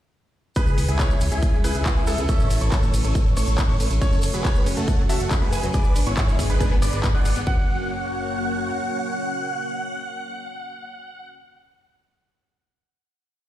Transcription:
0.56 analog synth pad G#3 C#4 E4 B4, supersaw synth G#4 B4, grand piano B4 B5, kick, closed hi-hat, shaker
0.67 analog synth bass C#2, shaker
0.78 analog synth bass C#2, open hi-hat, ride, shaker
0.88 analog synth bass C#2, supersaw synth E4 G#4, grand piano G#5, closed hi-hat, shaker
0.99 grand piano C#5, kick, cross-stick, clap, closed hi-hat, shaker
1.10 analog synth bass C#2, shaker
1.21 analog synth bass C#2, open hi-hat, ride, shaker
1.32 analog synth bass C#2, supersaw synth E4 G#4, grand piano G#5, closed hi-hat, shaker
1.42 kick, closed hi-hat, shaker
1.53 analog synth bass C#2
1.64 analog synth bass C#2, supersaw synth E4 G#4, grand piano B4 G#5, open hi-hat, ride, shaker
1.75 analog synth bass C#2, closed hi-hat, shaker
1.86 kick, clap, closed hi-hat, shaker
1.96 analog synth bass C#2, supersaw synth E4 G#4, grand piano G#5
2.07 analog synth bass C#2, grand piano A4, open hi-hat, ride, shaker
2.18 analog synth bass C#2, closed hi-hat, shaker
2.29 analog synth pad A3, supersaw synth C#5 E5, grand piano E6, kick, closed hi-hat, shaker
2.40 analog synth bass A1, shaker
2.50 analog synth bass A1, open hi-hat, ride, shaker
2.61 analog synth bass A1, supersaw synth A4 C#5, grand piano C#6, closed hi-hat, shaker
2.72 kick, cross-stick, clap, closed hi-hat, shaker
2.83 analog synth bass A1, shaker
2.94 analog synth bass A1, open hi-hat, ride, shaker
3.04 analog synth bass A1, supersaw synth A4 C#5, grand piano C#6, closed hi-hat, shaker
3.15 kick, closed hi-hat, shaker
3.26 analog synth bass A1
3.37 analog synth bass A1, supersaw synth A4 C#5, grand piano C#6, cross-stick, open hi-hat, ride, shaker
3.47 analog synth bass A1, closed hi-hat, shaker
3.58 kick, clap, closed hi-hat, shaker
3.69 analog synth bass A1, supersaw synth A4 C#5, grand piano C#6
3.80 analog synth bass A1, open hi-hat, ride, shaker
3.91 analog synth bass A1, closed hi-hat, shaker
4.01 synth pluck C#4, analog synth pad F#4 C#5, supersaw synth A4 C#5, grand piano C#5 C#6, kick, closed hi-hat, shaker
4.12 analog synth bass F#1, synth pluck A3, shaker
4.22 analog synth bass F#1, open hi-hat, ride, shaker
4.34 analog synth bass F#1, synth pluck F#3, supersaw synth G#4 B4, grand piano B5, closed hi-hat, shaker
4.45 synth pluck F#4, grand piano C#5, kick, cross-stick, clap, closed hi-hat, shaker
4.55 analog synth bass F#1, shaker
4.66 analog synth bass F#1, synth pluck C#4, open hi-hat, ride, shaker
4.77 analog synth bass F#1, synth pluck A3, supersaw synth F#4 A4, grand piano A5, closed hi-hat, shaker
4.88 kick, closed hi-hat, shaker
4.99 analog synth bass F#1, synth pluck F#3
5.09 analog synth bass F#1, synth pluck F#4, supersaw synth F#4 A4, grand piano E5 A5, open hi-hat, ride, shaker
5.20 analog synth bass F#1, closed hi-hat, shaker
5.31 synth pluck C#4, kick, clap, closed hi-hat, shaker
5.42 analog synth bass F#1, synth pluck A3, supersaw synth G#4 B4, grand piano B5
5.53 analog synth bass F#1, grand piano G#5, open hi-hat, ride, shaker
5.63 analog synth bass F#1, synth pluck F#3, closed hi-hat, shaker
5.74 analog synth pad G#3 B3 D4 B4, synth pluck G#4, supersaw synth B4 D5, grand piano D6, kick, closed hi-hat, shaker
5.84 analog synth bass G#1, shaker
5.96 analog synth bass G#1, synth pluck D4, open hi-hat, ride, shaker
6.06 analog synth bass G#1, synth pluck B3, supersaw synth E4 C#5, grand piano C#6, closed hi-hat, shaker
6.17 kick, cross-stick, clap, closed hi-hat, shaker
6.28 analog synth bass G#1, synth pluck G#3, shaker
6.39 analog synth bass G#1, synth pluck G#4, kick, open hi-hat, ride, shaker
6.50 analog synth bass G#1, supersaw synth G#4 B4, grand piano B5, closed hi-hat, shaker
6.61 synth pluck D4, kick, closed hi-hat, shaker
6.71 analog synth bass G#1, synth pluck B3
6.82 analog synth bass G#1, supersaw synth B4 D5, grand piano D6, cross-stick, open hi-hat, ride, shaker
6.93 analog synth bass G#1, synth pluck G#3, closed hi-hat, shaker
7.04 synth pluck G#3, kick, clap, closed hi-hat, shaker
7.14 analog synth bass G#1, synth pluck G#4, supersaw synth D5 F#5, grand piano F#6
7.25 analog synth bass G#1, synth pluck G#4, open hi-hat, ride, shaker
7.36 analog synth bass G#1, synth pluck B3, closed hi-hat, shaker
7.47 analog synth bass F#1, synth pluck F#3, analog synth pad A#3 C#4 F#4 C#5, supersaw synth F#5, grand piano F#5 F#6, kick

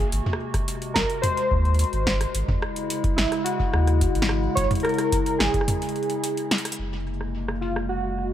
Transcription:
Already playing: ambient pad C3 F#4
0.12 sub bass G#1, ambient pad G#3, closed hi-hat
0.26 mid tom
0.33 cross-stick
0.54 kick, cross-stick, closed hi-hat
0.68 closed hi-hat
0.82 closed hi-hat
0.94 sub bass G#1, synth keys A#4, kick, snare
1.10 closed hi-hat
1.22 synth keys C5, closed hi-hat, mid tom
1.37 closed hi-hat
1.51 sub bass D#2, kick
1.65 closed hi-hat
1.74 closed hi-hat
1.79 closed hi-hat
1.84 closed hi-hat
1.93 sub bass G#1, closed hi-hat
2.07 kick, snare
2.21 cross-stick, closed hi-hat
2.35 sub bass G#1, ambient pad C#3 E4, closed hi-hat
2.48 kick, mid tom
2.62 cross-stick
2.76 closed hi-hat
2.90 closed hi-hat
3.04 kick, closed hi-hat
3.16 sub bass G#1, synth keys E4, snare
3.32 cross-stick, closed hi-hat
3.44 synth keys F#4, closed hi-hat
3.60 kick
3.73 sub bass D#2, cross-stick
3.87 cross-stick, closed hi-hat
4.01 kick, closed hi-hat
4.15 sub bass G#1, closed hi-hat
4.22 snare
4.29 cross-stick
4.55 sub bass G#1, synth keys C#5, kick, closed hi-hat
4.71 closed hi-hat, mid tom
4.75 closed hi-hat
4.80 synth keys A#4, closed hi-hat
4.85 cross-stick, closed hi-hat
4.89 closed hi-hat
4.94 closed hi-hat
4.98 cross-stick, closed hi-hat
5.12 kick, closed hi-hat
5.26 closed hi-hat
5.38 sub bass G#1, synth keys G#4, snare
5.54 kick, closed hi-hat
5.61 cross-stick
5.68 closed hi-hat, mid tom
5.82 closed hi-hat
5.89 closed hi-hat
5.96 closed hi-hat
6.03 closed hi-hat
6.10 closed hi-hat
6.24 closed hi-hat
6.37 closed hi-hat
6.51 snare, closed hi-hat
6.58 closed hi-hat
6.65 cross-stick, closed hi-hat
6.72 closed hi-hat
6.79 sub bass F#1, ambient pad C3 G#3 A#3 F5
7.21 cross-stick
7.48 cross-stick
7.61 synth keys F4, open hi-hat
7.76 cross-stick
7.89 synth keys F#4

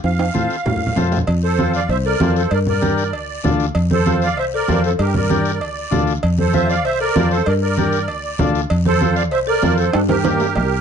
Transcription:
0.04 fingered electric bass F2, accordion F5, high conga, high timbale, long guiro
0.19 high timbale
0.34 fingered electric bass A2, transistor combo organ C4 F4 A4, high conga, short guiro
0.50 short guiro
0.66 fingered electric bass A2, low conga, low timbale, long guiro
0.76 low conga
0.87 low conga
0.96 fingered electric bass F2, transistor combo organ C4 F4 A4, low conga, low timbale, short guiro
1.12 low timbale, short guiro
1.17 low conga
1.27 fingered electric bass F2, cowbell, long guiro
1.43 marimba A4, accordion A4 C5
1.59 transistor combo organ C4 F4 A4, high conga, short guiro
1.74 marimba D5, accordion D5 F5, short guiro
1.89 fingered electric bass C2, marimba C5, accordion C5 E5, cowbell, long guiro
2.05 marimba A4, accordion A#4 D5
2.20 fingered electric bass F2, transistor combo organ C4 F4 A4, high conga, low timbale, short guiro
2.36 marimba A4, accordion A4 C5, short guiro
2.51 fingered electric bass G2, marimba A#4, accordion A#4 D5, cowbell, long guiro
2.67 marimba A#4, accordion A#4 D5, low conga
2.81 transistor combo organ D4 G4 A#4, high conga, short guiro
2.98 short guiro
3.13 fingered electric bass D2, cowbell, long guiro
3.44 fingered electric bass D2, transistor combo organ D4 F4 A4, high conga, low conga, low timbale, short guiro
3.60 short guiro
3.75 fingered electric bass F2, cowbell, long guiro
3.91 marimba A4, accordion A4 C5, high conga
4.06 transistor combo organ C4 F4 A4, high conga, short guiro
4.22 marimba D5, accordion D5 F5, short guiro
4.37 fingered electric bass C2, accordion C5 E5, marimba C5, cowbell, long guiro
4.54 marimba A4, accordion A#4 D5
4.68 fingered electric bass F2, transistor combo organ C4 F4 A4, high conga, low timbale, short guiro
4.84 accordion A4 C5, marimba A4, short guiro
4.99 fingered electric bass G2, accordion G4 A#4, marimba G4, cowbell, long guiro
5.15 accordion A#4 D5, marimba A#4, high conga, low conga
5.30 transistor combo organ D4 G4 A#4, high conga, short guiro
5.45 short guiro
5.61 fingered electric bass D2, cowbell, long guiro
5.91 fingered electric bass D2, transistor combo organ D4 F4 A4, high conga, low conga, short guiro
6.07 short guiro
6.23 fingered electric bass F2, cowbell, long guiro
6.38 marimba A4, accordion A4 C5, high conga
6.53 transistor combo organ C4 F4 A4, marimba C5, accordion C5 E5, high conga, short guiro
6.69 accordion D5 F5, marimba D5, short guiro
6.85 fingered electric bass C2, accordion C5 E5, marimba C5, cowbell, long guiro
7.00 marimba A4, accordion A#4 D5
7.15 fingered electric bass F2, transistor combo organ C4 F4 A4, high conga, low timbale, short guiro
7.31 marimba A4, accordion A4 C5, short guiro
7.46 fingered electric bass G2, marimba A#4, accordion A#4 D5, cowbell, long guiro
7.62 accordion A#4 D5, marimba A#4
7.77 transistor combo organ D4 G4 A#4, high conga, short guiro
7.93 short guiro
8.08 fingered electric bass D2, cowbell, long guiro
8.39 fingered electric bass D2, transistor combo organ D4 F4 A4, high conga, low conga, low timbale, short guiro
8.55 short guiro
8.70 fingered electric bass F2, cowbell, long guiro
8.85 marimba A4, accordion A4 C5, high conga
9.01 transistor combo organ C4 F4 A4, high conga, short guiro
9.16 marimba D5, accordion D5 F5, short guiro
9.31 fingered electric bass C2, marimba C5, accordion C5 E5, cowbell, long guiro
9.47 marimba A4, accordion A#4 D5
9.62 fingered electric bass F2, transistor combo organ C4 F4 A4, high conga, low timbale, short guiro
9.77 marimba A4, accordion A4 C5, short guiro
9.92 fingered electric bass G2, marimba D4, accordion D4 A4, cowbell, high timbale, long guiro
10.08 marimba G4, accordion G4 A#4, high conga, high timbale
10.24 transistor combo organ A#3 D4 G4, high conga, high timbale, short guiro
10.40 low timbale, short guiro
10.55 fingered electric bass C2, cowbell, low timbale, long guiro

